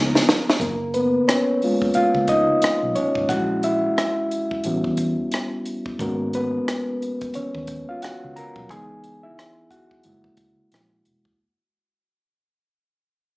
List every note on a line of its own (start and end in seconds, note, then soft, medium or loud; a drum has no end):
0.00 0.57 B2 medium
0.00 0.57 C#3 medium
0.00 0.61 F3 medium
0.00 0.61 A#3 soft
0.00 0.62 B3 soft
0.00 0.56 D#4 medium
0.00 0.61 D#4 medium
0.00 0.23 F4 medium
0.00 0.57 F4 medium
0.00 0.57 A#4 medium
0.00 0.23 F5 loud
0.15 snare medium
0.29 snare loud
0.50 snare loud
0.60 1.19 F#1 loud
0.60 0.93 A#3 medium
0.60 0.95 A#4 medium
0.60 kick medium
0.60 closed hi-hat medium
0.94 1.11 B3 medium
0.94 1.09 B4 medium
0.94 closed hi-hat medium
1.28 1.92 C#4 medium
1.28 1.97 C#5 medium
1.28 cross-stick loud
1.28 closed hi-hat medium
1.62 2.59 G#3 medium
1.62 2.59 A#3 soft
1.62 1.96 F4 medium
1.62 open hi-hat soft
1.82 kick medium
1.94 2.27 F4 medium
1.94 2.30 F5 medium
1.94 muted fingered electric bass stroke soft
1.94 closed hi-hat medium
2.15 2.44 C#2 medium
2.15 kick medium
2.28 2.93 D#4 medium
2.28 2.98 D#5 medium
2.28 kick medium
2.28 closed hi-hat medium
2.62 muted fingered electric bass stroke soft
2.62 cross-stick loud
2.62 closed hi-hat medium
2.83 2.94 B1 medium
2.95 3.28 C#4 medium
2.95 3.30 C#5 medium
2.95 closed hi-hat medium
3.15 3.28 G#1 medium
3.15 kick medium
3.29 3.88 A#1 medium
3.29 3.77 G#3 medium
3.29 3.77 C#4 soft
3.29 3.65 E4 medium
3.29 3.62 F#4 medium
3.29 3.64 F#5 medium
3.29 kick medium
3.29 closed hi-hat medium
3.63 3.81 E4 medium
3.63 3.79 E5 medium
3.63 closed hi-hat medium
3.98 5.63 E4 medium
3.98 5.62 E5 medium
3.98 cross-stick loud
3.98 closed hi-hat medium
4.31 closed hi-hat medium
4.51 kick medium
4.64 4.83 A1 medium
4.64 5.62 G3 medium
4.64 5.62 B3 soft
4.64 5.62 C#4 soft
4.64 5.63 F#4 medium
4.64 closed hi-hat medium
4.84 5.14 E2 medium
4.84 kick medium
4.97 kick medium
4.97 closed hi-hat medium
5.32 cross-stick loud
5.32 closed hi-hat medium
5.66 closed hi-hat medium
5.86 kick medium
5.99 6.58 G#1 medium
5.99 8.65 G#3 soft
5.99 6.32 A#3 medium
5.99 6.35 B3 soft
5.99 7.35 C#4 soft
5.99 8.03 F#4 medium
5.99 6.35 A#4 medium
5.99 kick medium
5.99 closed hi-hat medium
6.33 7.32 B3 medium
6.33 7.38 B4 medium
6.33 closed hi-hat medium
6.68 cross-stick loud
6.68 closed hi-hat medium
7.02 closed hi-hat medium
7.21 kick medium
7.21 closed hi-hat soft
7.34 7.86 C#4 medium
7.34 7.90 C#5 medium
7.34 muted fingered electric bass stroke soft
7.34 closed hi-hat medium
7.55 7.84 D#2 medium
7.55 kick medium
7.67 kick medium
7.67 closed hi-hat medium
7.89 8.02 F4 medium
7.89 8.02 F5 medium
8.02 8.34 F#4 medium
8.02 8.33 F#5 medium
8.02 muted fingered electric bass stroke soft
8.02 cross-stick medium
8.02 closed hi-hat medium
8.24 8.35 C#2 medium
8.36 8.68 A#4 medium
8.36 8.70 A#5 medium
8.36 closed hi-hat medium
8.56 8.70 B1 medium
8.56 kick medium
8.69 9.28 C#2 medium
8.69 9.17 E3 soft
8.69 9.18 B3 soft
8.69 9.18 D#4 medium
8.69 9.21 G#4 medium
8.69 9.25 G#5 medium
8.69 kick medium
8.69 closed hi-hat medium
9.04 closed hi-hat soft
9.23 9.68 E4 medium
9.23 9.72 E5 medium
9.39 cross-stick medium
9.39 closed hi-hat medium
9.71 11.02 F#4 medium
9.71 11.01 F#5 medium
9.71 kick medium
9.71 closed hi-hat soft
9.91 kick medium
10.03 10.22 F#1 medium
10.03 10.52 G#3 soft
10.03 10.52 A#3 soft
10.03 10.52 E4 medium
10.03 closed hi-hat medium
10.24 10.54 C#2 medium
10.24 kick medium
10.37 kick medium
10.37 closed hi-hat medium
10.72 11.01 A#1 medium
10.72 cross-stick medium
10.72 closed hi-hat medium
11.05 11.23 E1 medium
11.05 closed hi-hat soft
11.25 kick medium